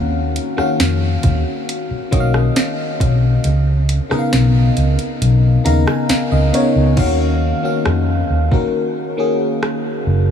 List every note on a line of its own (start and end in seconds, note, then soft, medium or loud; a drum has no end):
0.00 0.37 D#2 loud
0.00 0.37 D#3 medium
0.00 0.38 A#3 medium
0.00 0.38 C#4 medium
0.00 0.42 F#4 medium
0.00 0.39 F5 loud
0.00 3.46 F#5 medium
0.36 closed hi-hat medium
0.57 1.84 D#3 medium
0.57 1.84 A#3 medium
0.57 1.85 C#4 medium
0.57 1.85 F#4 medium
0.57 1.85 F5 medium
0.57 muted fingered electric bass stroke soft
0.57 cross-stick medium
0.80 1.15 F2 medium
0.80 snare loud
0.80 closed hi-hat medium
1.23 1.42 D#2 medium
1.23 kick medium
1.23 closed hi-hat medium
1.69 closed hi-hat medium
1.91 muted fingered electric bass stroke medium
2.11 2.48 B1 medium
2.11 3.44 D#3 medium
2.11 3.44 A#3 medium
2.11 3.45 C#4 medium
2.11 3.45 F#4 medium
2.11 2.19 D#5 medium
2.11 kick loud
2.11 closed hi-hat medium
2.20 3.48 F5 medium
2.34 cross-stick medium
2.56 snare loud
2.56 closed hi-hat medium
3.00 3.36 B1 medium
3.00 kick loud
3.00 closed hi-hat medium
3.44 3.98 C#2 loud
3.44 closed hi-hat medium
3.89 closed hi-hat medium
4.09 5.37 C#3 medium
4.09 5.37 B3 medium
4.09 5.38 D#4 medium
4.09 5.38 A#4 medium
4.09 4.18 D#5 medium
4.09 muted fingered electric bass stroke soft
4.09 cross-stick medium
4.18 5.42 F5 medium
4.33 4.68 B1 loud
4.33 snare loud
4.33 closed hi-hat medium
4.77 4.95 C#2 medium
4.77 closed hi-hat medium
4.99 closed hi-hat soft
5.21 5.57 B1 loud
5.21 closed hi-hat medium
5.64 5.83 D#2 medium
5.64 6.37 C#3 medium
5.64 6.37 B3 medium
5.64 6.38 D#4 medium
5.64 6.38 A#4 medium
5.64 6.08 F5 medium
5.64 5.85 A#5 medium
5.64 closed hi-hat medium
5.87 6.08 G#5 medium
5.87 cross-stick loud
6.09 6.30 F5 medium
6.09 muted fingered electric bass stroke soft
6.09 snare loud
6.09 closed hi-hat medium
6.32 6.49 C#2 medium
6.32 6.52 D#5 medium
6.53 6.89 C#3 medium
6.53 6.90 B3 medium
6.53 6.90 D#4 medium
6.53 6.90 A#4 medium
6.53 6.91 C#5 medium
6.53 closed hi-hat medium
6.76 6.93 C#2 medium
6.97 7.51 D#2 loud
6.97 7.51 D#3 loud
6.97 7.52 A#3 medium
6.97 7.52 C#4 medium
6.97 7.52 F#4 medium
6.97 7.53 F5 loud
6.97 kick loud
6.97 crash medium
7.63 8.36 D#3 medium
7.63 8.36 A#3 medium
7.63 8.36 C#4 medium
7.63 8.37 F#4 medium
7.63 8.37 F5 medium
7.85 8.21 F2 medium
7.85 cross-stick loud
8.30 8.48 D#2 medium
8.51 9.06 D#3 medium
8.51 9.06 A#3 medium
8.51 9.06 C#4 medium
8.51 9.07 F#4 medium
8.51 9.07 A#4 medium
8.51 kick medium
9.17 10.26 D#3 medium
9.17 10.27 A#3 medium
9.17 10.27 C#4 medium
9.17 10.27 F#4 medium
9.17 10.28 G#4 medium
9.63 cross-stick loud
10.06 10.31 F#1 medium